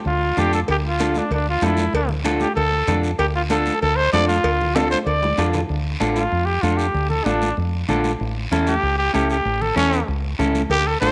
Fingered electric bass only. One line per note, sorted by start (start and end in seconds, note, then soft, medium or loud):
0.06 0.31 D2 medium
0.37 0.62 F2 medium
0.69 1.19 D2 loud
1.31 1.56 D2 medium
1.62 1.87 F2 medium
1.93 2.44 D2 loud
2.57 2.82 D2 loud
2.87 3.13 F2 medium
3.19 3.69 D2 loud
3.83 4.07 D2 loud
4.13 4.38 F2 medium
4.44 4.94 D2 loud
5.06 5.32 D2 loud
5.38 5.63 F2 medium
5.70 5.95 D2 loud
6.01 6.26 A1 medium
6.32 6.57 F2 medium
6.63 6.88 F2 medium
6.94 7.20 D2 loud
7.26 7.51 A1 loud
7.58 7.83 F2 medium
7.89 8.14 A#1 loud
8.21 8.46 A1 loud
8.51 8.77 E2 loud
8.83 9.08 C#2 medium
9.14 9.39 C#2 medium
9.45 9.70 A1 loud
9.76 10.02 E2 loud
10.08 10.33 C#2 medium
10.39 10.64 C#2 medium
10.69 10.95 D2 loud
11.02 11.12 A1 medium